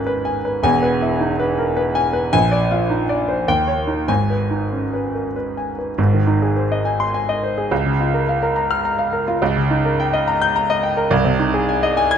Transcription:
Already playing: G#1 G#2 C#4 D#4 A#4 B4 G#5
0.07 B4
0.25 G#5
0.45 B4
0.63 E1 E2 G#5
0.83 B4
1.02 E4
1.20 D#4
1.40 B4
1.59 A#4
1.77 B4
1.95 G#5
2.13 B4
2.33 A#1 G#5
2.52 D5
2.71 F4
2.90 D#4
3.09 D5
3.28 C5
3.48 D#2 G5
3.67 C#5
3.87 D#4
4.07 G#1 G#2 G#5
4.30 B4
4.51 D#4
4.72 C#4
4.93 B4
5.15 A#4
5.36 B4
5.57 G#5
5.79 B4
5.98 G#1 G#2
6.13 D#3
6.27 D#4
6.42 G#4
6.56 C5
6.72 D#5
6.85 G#5
7.00 C6
7.14 G#5
7.29 D#5
7.43 C5
7.58 G#4
7.71 C#2
7.86 C#3
8.00 F4
8.14 A#4
8.29 F5
8.43 A#4
8.56 A#5
8.71 F6
8.85 A#5
8.99 F5
9.13 A#4
9.28 F4
9.42 C#2
9.56 C#3
9.71 D#4
9.85 A#4
10.00 G5
10.13 D#5
10.28 A#5
10.42 G6
10.56 A#5
10.70 D#5
10.83 G5
10.97 A#4
11.11 C2
11.24 C3
11.39 D#4
11.54 G#4
11.69 G#5
11.83 D#5
11.97 G#5
12.11 G#6

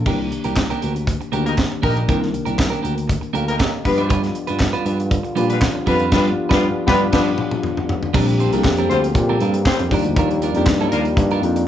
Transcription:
0.05 C2 D#3 A#3 D4 G4 A#4, kick, crash
0.20 muted clean electric guitar stroke
0.32 muted clean electric guitar stroke, closed hi-hat
0.44 C2 A#3 D4 G4 A#4, closed hi-hat
0.56 muted clean electric guitar stroke, kick, snare, clap
0.70 A#3 D4 G4 A#4, closed hi-hat
0.82 D2 A#3 D4 G4 A#4, closed hi-hat
0.95 muted clean electric guitar stroke, closed hi-hat
1.07 muted clean electric guitar stroke, kick, closed hi-hat
1.21 muted clean electric guitar stroke, closed hi-hat
1.32 D2 D#3 A#3 D4 G4 A#4, closed hi-hat
1.46 G3 A#3 D#4 A#4, muted clean electric guitar stroke, closed hi-hat
1.58 muted clean electric guitar stroke, kick, snare, clap
1.70 muted clean electric guitar stroke
1.82 A#1 G3 A#3 D4 D#4 G4 A#4, kick, open hi-hat
1.96 A#3 D4 G4 A#4, closed hi-hat
2.08 C2 D#3 A#3 D4 G4 A#4, kick, closed hi-hat
2.22 muted clean electric guitar stroke, snare
2.34 muted clean electric guitar stroke, closed hi-hat
2.45 C2 A#3 D4 G4 A#4, closed hi-hat
2.58 muted clean electric guitar stroke, kick, snare, clap
2.70 A#3 D4 G4 A#4, closed hi-hat
2.82 D2 A#3 D4 G4 A#4, closed hi-hat
2.96 muted clean electric guitar stroke, closed hi-hat
3.08 muted clean electric guitar stroke, kick, closed hi-hat
3.21 muted clean electric guitar stroke, closed hi-hat
3.33 D2 A#3 D4 G4 A4 A#4 F5, closed hi-hat
3.47 G3 A#3 D#4 A#4, muted clean electric guitar stroke, closed hi-hat
3.58 A#3 D4 G4 A#4, kick, snare, clap
3.62 G4 D#5
3.72 muted clean electric guitar stroke
3.84 G2 F3 G3 A#3 B3 D4 F4 G4 B4, muted clean electric guitar stroke, kick, open hi-hat
3.93 B3
3.98 G3 D4 F4 D5, closed hi-hat
4.09 D3 G3 B3 D4 F4 B4, kick, closed hi-hat
4.23 muted clean electric guitar stroke, snare, closed hi-hat
4.35 muted clean electric guitar stroke, closed hi-hat
4.47 G2 G3 D4 F4 B4, closed hi-hat
4.59 muted clean electric guitar stroke, kick, snare, clap
4.73 G3 D4 F4 B4, closed hi-hat
4.85 G2 G3 D4 F4 B4, closed hi-hat
4.99 muted clean electric guitar stroke, closed hi-hat
5.11 muted clean electric guitar stroke, kick, closed hi-hat
5.23 muted clean electric guitar stroke, closed hi-hat
5.36 A#2 F3 G3 B3 D4 F4 G4 B4, closed hi-hat
5.50 G3 B3 F4 B4, muted clean electric guitar stroke, closed hi-hat
5.62 muted clean electric guitar stroke, kick, snare, clap
5.75 muted clean electric guitar stroke
5.86 F2 G3 B3 D4 F4 B4, kick, open hi-hat
5.99 G3 D4 F4 B4, closed hi-hat
6.12 G2 F3 G3 B3 D4 F4 G4 B4, kick, snare, crash
6.49 G2 F3 G3 B3 D4 F4 G4 B4, kick, snare
6.86 G2 F3 G3 B3 D4 F4 G4 B4, kick, snare
7.12 G2 F3 G3 B3 D4 F4 G4 B4, kick, snare, crash
7.38 mid tom
7.51 mid tom
7.63 floor tom
7.77 floor tom
7.89 floor tom
8.03 floor tom
8.14 A#1 D3 F3 G3 A#3 C4 D4 G4 A#4, kick, crash
8.27 muted clean electric guitar stroke, closed hi-hat
8.39 G3 C4 D4 C5, closed hi-hat
8.52 C2 F3 G3 A#3 C4 D4 G#4 A#4, closed hi-hat
8.60 A4
8.64 F2, muted clean electric guitar stroke, kick, snare, clap
8.78 G3 C4 D4 A#4, closed hi-hat
8.90 D2 G3 C4 D4 F4 C5, closed hi-hat
9.03 muted clean electric guitar stroke, closed hi-hat
9.15 A#2 A#4 G5, muted clean electric guitar stroke, kick, closed hi-hat
9.29 G3 C4 D4 A#4
9.40 G2 G3 C4 D4 A4 A#4 F5, closed hi-hat
9.54 muted clean electric guitar stroke, closed hi-hat
9.65 G3 C4 F4 C5, kick, snare, clap
9.79 F2, muted clean electric guitar stroke, closed hi-hat
9.91 D#2 D#3 F3 G3 A#3 D4 D#4 F4 G4 A#4 D5, kick, open hi-hat
10.04 D2, muted clean electric guitar stroke, closed hi-hat
10.16 D#2 G3 D4 F4 A#4, kick, closed hi-hat
10.31 muted clean electric guitar stroke, closed hi-hat
10.42 G3 D4 F4 A#4, closed hi-hat
10.54 F2 F3 G3 A#3 D4 D#4 F4 G4 A#4, closed hi-hat
10.66 G2, muted clean electric guitar stroke, kick, snare, clap
10.80 G3 D4 F4 A#4, closed hi-hat
10.92 D#2 G3 A#3 D4 F4 A#4, closed hi-hat
11.05 muted clean electric guitar stroke, closed hi-hat
11.17 G2, muted clean electric guitar stroke, kick, closed hi-hat
11.31 G3 D4 F4 A#4, closed hi-hat
11.42 F2 F3 A#3 D4 D#4 F4, muted clean electric guitar stroke, closed hi-hat
11.56 muted clean electric guitar stroke, closed hi-hat

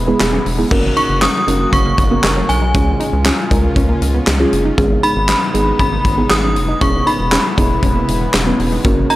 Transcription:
Already playing: E1 C#3 E3 G#3 B3 E4 B5
0.07 G#3 B3 E4 G#4
0.20 E1, snare, clap, closed hi-hat
0.33 C#4
0.46 E1, open hi-hat
0.58 G#3 B3 D#4 E4 G#4
0.71 F#1 C#3 F#3 G#3 A#3 C#4 F#4 A#4, kick, crash
0.97 D#4 C#6, closed hi-hat
1.09 F#1
1.22 C#4 D#6, snare, clap, closed hi-hat
1.47 F#1 A#3 C#4 D#4 F#4 A#4, closed hi-hat
1.73 F#1 C#4 C#6, kick, closed hi-hat
1.86 A#3
1.98 F#1, kick, closed hi-hat
2.11 A#3 B3 C#4 F#4 A#4
2.24 F#1, snare, clap, closed hi-hat
2.36 C#4
2.49 B1 G#5, closed hi-hat
2.62 D#4
2.74 C#2 G#3 C#4 F4 G#4, kick, closed hi-hat
3.00 D#4, closed hi-hat
3.13 C#2
3.25 C#4, snare, clap, closed hi-hat
3.51 C#2 G#3 C#4 D#4 F4 A#4, kick, closed hi-hat
3.76 C#2 C#4, kick, closed hi-hat
3.89 A#3
4.02 C#2, closed hi-hat
4.14 B3
4.27 C#2, snare, clap, closed hi-hat
4.40 G#3 C#4 F4 G#4
4.53 F#1, closed hi-hat
4.65 D#4
4.78 G#1 G#3 B3 C#4 D#4 G#4, kick, closed hi-hat
5.03 D#4 B5, closed hi-hat
5.16 G#1
5.29 C#4, snare, clap, closed hi-hat
5.54 G#1 G#3 B3 D#4 G#4, closed hi-hat
5.79 G#1 C#4 B5, kick, closed hi-hat
5.92 A#3
6.05 G#1, kick, closed hi-hat
6.18 G#3 B3 D#4 G#4
6.30 G#1 D#6, snare, clap, closed hi-hat
6.43 C#4
6.56 F1, closed hi-hat
6.69 D#4
6.81 E1 C#3 E3 G#3 B3 C#4 E4 G#4 C#6, kick, closed hi-hat
7.07 D#4 B5, closed hi-hat
7.19 E1
7.32 C#4, snare, clap, closed hi-hat
7.57 E1 G#3 B3 D#4 E4 G#4, kick, closed hi-hat
7.83 E1 C#4, kick, closed hi-hat
7.96 A#3
8.08 E1, closed hi-hat
8.21 B3
8.34 E1, snare, clap, closed hi-hat
8.47 G#3 B3 C#4 E4 B4
8.59 E1, open hi-hat
8.72 D#4
8.85 F#1 F#3 A#3 C#4 F#4 A#4, kick, closed hi-hat
9.10 D#4 A#5, closed hi-hat

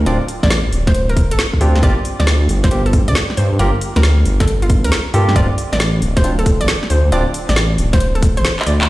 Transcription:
0.06 D1 C4 D4 F4 D5, closed hi-hat
0.28 open hi-hat
0.43 A1 D5, kick, snare, closed hi-hat
0.50 snare, closed hi-hat
0.72 D1, open hi-hat
0.87 C5, kick, snare, closed hi-hat
0.95 closed hi-hat
1.09 A#4, closed hi-hat
1.17 kick, open hi-hat
1.31 A1 A4, closed hi-hat
1.39 snare, closed hi-hat
1.53 kick
1.61 D2 C4 D4 F4 G4, open hi-hat
1.76 D2, snare
1.83 G1 A#3 F4 G4 D5, kick, closed hi-hat
2.05 open hi-hat
2.20 D2 D5, snare, closed hi-hat
2.27 snare, closed hi-hat
2.49 G1, open hi-hat
2.64 C5, kick, snare, closed hi-hat
2.71 A#3 F4 G4, closed hi-hat
2.86 A4, closed hi-hat
2.93 kick, open hi-hat
3.08 D2 D5, closed hi-hat
3.15 snare, closed hi-hat
3.30 snare
3.37 G2 C5, open hi-hat
3.52 G2
3.59 G1 A#3 F4 G4 A#4, closed hi-hat
3.81 open hi-hat
3.96 D2 A#4, snare, closed hi-hat
4.03 snare, closed hi-hat
4.25 G1, open hi-hat
4.40 A4, kick, snare, closed hi-hat
4.48 closed hi-hat
4.62 F4, closed hi-hat
4.70 kick, open hi-hat
4.84 D2 A#4, closed hi-hat
4.92 snare, closed hi-hat
5.14 G2 A#3 F4 G4 A4, open hi-hat
5.28 G2, snare
5.36 D1 C4 D4 F4 D5, kick, closed hi-hat
5.58 open hi-hat
5.73 A1 D5, snare, closed hi-hat
5.80 snare, closed hi-hat
6.02 D1, open hi-hat
6.17 C5, kick, snare, closed hi-hat
6.24 C4 D4 F4, closed hi-hat
6.39 A4, closed hi-hat
6.46 kick, open hi-hat
6.61 A1 D5, closed hi-hat
6.68 snare, closed hi-hat
6.83 snare
6.90 D2 C5, open hi-hat
7.05 D2
7.12 D1 C4 D4 F4 D5, closed hi-hat
7.34 open hi-hat
7.49 A1 D5, snare, open hi-hat
7.56 snare, closed hi-hat
7.78 D1, open hi-hat
7.93 C5, kick, snare, closed hi-hat
8.00 closed hi-hat
8.15 A4, closed hi-hat
8.22 kick, open hi-hat
8.37 A1 C5, closed hi-hat
8.45 snare, closed hi-hat
8.59 clap
8.66 D2 D5, open hi-hat
8.81 D2, clap

